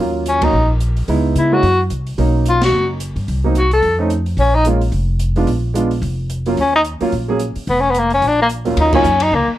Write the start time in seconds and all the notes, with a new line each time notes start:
0.00 D#2 F#3 A#3 C#4 F4
0.26 C#4, closed hi-hat
0.42 F#3 A#3 C#4 D#4 F#4, kick, ride
0.53 A#1
0.81 closed hi-hat
0.97 open hi-hat
1.08 C#2 G#3 B3 D#4 E4, open hi-hat
1.35 C#3 E4, closed hi-hat
1.52 G#3 A#3 C#4 E4 F#4
1.63 F#2, open hi-hat
1.90 C2, closed hi-hat
2.07 open hi-hat
2.18 B1 F#3 A#3 C#4 D#4, open hi-hat
2.46 F4, closed hi-hat
2.61 F#4, snare, ride
2.72 F#1
3.00 closed hi-hat
3.16 G2, open hi-hat
3.28 C2, open hi-hat
3.44 F#3 A#3 C4 D#4
3.55 F#4, closed hi-hat
3.71 A4, open hi-hat
3.82 F2, open hi-hat
3.99 A3 C4 C#4 D#4
4.10 closed hi-hat
4.26 open hi-hat
4.37 A#1 C#4, open hi-hat
4.54 D#4
4.65 G#3 A#3 C#4 F4, closed hi-hat
4.81 open hi-hat
4.92 F1, open hi-hat
5.19 closed hi-hat
5.36 G#3 B3 D4 F4, open hi-hat
5.47 A#1, open hi-hat
5.74 G#3 B3 D4 F4, closed hi-hat
5.91 open hi-hat
6.02 F1, open hi-hat
6.30 closed hi-hat
6.46 F#3 A#3 C#4 F4, open hi-hat
6.57 D#2 C#4, open hi-hat
6.75 D#4
6.85 closed hi-hat
7.01 F#3 A#3 C#4 F4, muted upright bass stroke, open hi-hat
7.12 A#1, open hi-hat
7.28 F#3 A#3 C#4 G#4
7.39 closed hi-hat
7.56 muted upright bass stroke, open hi-hat
7.67 F1 B3, open hi-hat
7.80 C#4
7.90 B3
7.94 closed hi-hat
7.98 A#3
8.10 C#4, open hi-hat
8.22 A#1, open hi-hat
8.27 D4
8.42 A#3
8.49 closed hi-hat
8.65 D#2 F#3 A#3 C#4 F4, open hi-hat
8.77 D#2 D#4, ride
8.93 F#3 A#3 C#4 D#4 F4, kick, crash
9.04 F#2, hi-hat pedal
9.20 D#4, ride
9.32 C#2 A#3
9.47 muted upright bass stroke